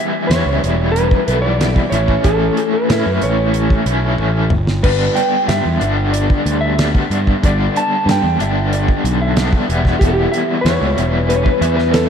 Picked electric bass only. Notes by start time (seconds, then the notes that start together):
0.30 E2
0.46 C#2
0.64 E1
1.28 B1
1.92 A1
2.25 A1
2.90 A2
3.06 F#2
3.23 A1
3.86 B1
4.18 A1
4.51 G1
4.84 G1
5.48 G2
5.66 E2
5.81 G1
6.46 D2
7.10 G2
7.44 G1
8.06 G2
8.23 E2
8.40 G1
9.04 B1
9.69 E1
10.01 E1
10.65 E2
10.81 C#2
10.97 E1
11.61 E2